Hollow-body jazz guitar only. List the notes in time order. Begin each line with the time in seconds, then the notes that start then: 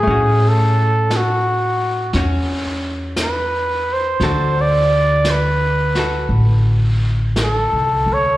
0.03 A3
0.07 C#4 F#4
2.15 C#4 F#4
4.23 D3 F#4 A4
5.97 F#4 A4